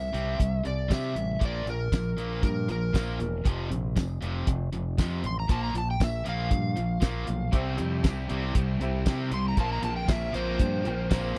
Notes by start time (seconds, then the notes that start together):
Already playing: C2 C3 G3 E5
0.13 C2 C3 G3 C4, closed hi-hat
0.38 C2 C3 G3, kick, closed hi-hat
0.63 C2 C3 G3 D5, closed hi-hat
0.88 C3 G3 C4, kick, snare, closed hi-hat, tambourine
0.94 E5
1.14 A1 C3 G3, closed hi-hat
1.39 A#1 A#2 F3 A#3, kick, closed hi-hat
1.45 D5
1.66 A#1 A#2 F3 A#4, closed hi-hat
1.92 A#1 A#2 F3, kick, snare, closed hi-hat, tambourine
2.17 A#1 A#2 F3 A#3, closed hi-hat
2.43 G2 A#2 F3 A#4, kick, closed hi-hat
2.68 A#1 A#2 F3 A#4, closed hi-hat
2.93 A#1 A#2 F3 A#3, kick, snare, closed hi-hat, tambourine
3.19 E1 A#2 F3, closed hi-hat
3.45 F1 F2 C3 F3, kick, closed hi-hat
3.70 A#1 F2 C3, closed hi-hat
3.96 F1 F2 C3, kick, snare, closed hi-hat, tambourine
4.21 F1 F2 C3 F3, closed hi-hat
4.47 F1 F2 C3, kick, closed hi-hat
4.72 F1 F2 C3, closed hi-hat
4.98 F2 C3 F3, kick, snare, closed hi-hat, tambourine
5.24 A1 F2 C3 C6, closed hi-hat
5.40 A#5
5.49 A#1 A#2 F3 A#3 A5, kick, closed hi-hat
5.64 A#5
5.74 A#1 A#2 F3, closed hi-hat
5.78 A5
5.91 G5
6.00 A#1 A#2 F3 E5, kick, snare, closed hi-hat, tambourine
6.25 A#1 A#2 F3 A#3, closed hi-hat
6.29 F5
6.50 G2 A#2 F3, kick, closed hi-hat
6.76 A#1 A#2 F3, closed hi-hat
7.00 A#1 A#2 F3 A#3, kick, snare, closed hi-hat, tambourine
7.26 B1 A#2 F3, closed hi-hat
7.52 C2 C3 G3 C4 E4 G4 C5 E5 G5, kick, closed hi-hat
7.78 F2 C3 G3 C4 E4, closed hi-hat
8.04 C2 C3 G3 C4 E4, kick, snare, closed hi-hat, tambourine
8.29 C2 C3 G3 C4 E4, closed hi-hat
8.55 C2 C3 G3 C4 E4, kick, closed hi-hat
8.80 C2 C3 G3 C4 E4 G4 C5 E5, closed hi-hat
9.06 C3 G3 C4 E4, kick, snare, closed hi-hat, tambourine
9.31 C2 C3 G3 C4 E4 C6, closed hi-hat
9.49 A#5
9.57 A#1 A#2 F3 A#3 C4 F4 A#4 C5 F5 A5, kick, closed hi-hat
9.73 A#5
9.83 A#1 A#2 F3 A#3 C4 A5, closed hi-hat
9.96 G5
10.08 A#1 A#2 F3 A#3 C4 E5, kick, snare, closed hi-hat, tambourine
10.32 A#1 A#2 F3 A#3 C4 C5, closed hi-hat
10.58 G2 A#2 F3 A#3 C4, kick, closed hi-hat
10.83 A#1 A#2 F3 A#3 C4 A#4 C5 G5, closed hi-hat
11.10 A#1 A#2 F3 A#3 C4, kick, snare, closed hi-hat, tambourine
11.35 A#2 F3